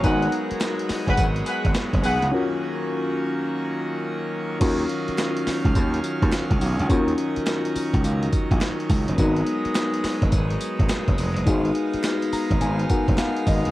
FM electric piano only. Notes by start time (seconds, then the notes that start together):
0.03 B3 D#4 F#4 A#4
2.32 C#4 F4 F#4 A#4
4.60 C#4 F4 F#4 A#4
6.89 C#4 F4 F#4 A#4
9.17 B3 D#4 F#4 A#4
11.46 B3 D#4 F#4 G#4
12.33 A#5
12.62 G#5
12.90 B3 D#4 F#4 A#4 F#5
13.19 F5
13.47 D#5